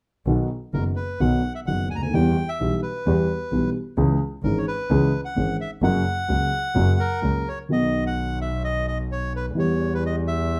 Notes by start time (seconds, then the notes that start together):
0.26 B1 B2 D#3 F#3 B3 F#4
0.73 F#1 F#2 D#3 F#3 B3 F#4 A#4
0.96 B4
1.20 B1 B2 D#3 F#3 B3 F#4 F#5
1.55 E5
1.66 F#1 F#2 D#3 F#3 B3 F#4 F#5
1.90 D2 G#5
1.95 C#2 A#5
2.02 D2 G#5
2.08 D#2
2.13 E2 E3 G3 B3 G4 G5
2.49 E5
2.60 B1 B2 E3 G3 B3 G4
2.82 B4
3.06 E2 E3 G3 B3 G4
3.51 B1 B2 E3 G3 B3 G4
3.97 C#2 C#3 E3 G#3 C#4 G#4
4.43 G#1 G#2 E3 G#3 C#4 G#4 A#4
4.58 C#5
4.67 B4
4.90 C#2 C#3 E3 G#3 C#4 G#4
5.25 F#5
5.36 G#1 G#2 E3 G#3 C#4 G#4
5.61 E5
5.82 F#1 F#2 C#3 F#3 A#3 F#4 F#5
6.29 C#2 C#3 F#3 A#3 F#4
6.75 F#1 F#2 C#3 F#3 A#3 F#4
7.00 A#4
7.22 C#2 C#3 F#3 A#3 F#4
7.48 C#5
7.69 B1 B2 D#3 F#3 B3 F#4 D#5
8.07 F#5
8.41 E5
8.64 D#5
8.88 D#5
9.12 C#5
9.36 B4
9.55 E2 E3 G3 B3 C#5
9.59 G4
9.94 B4
10.06 D#5
10.27 E5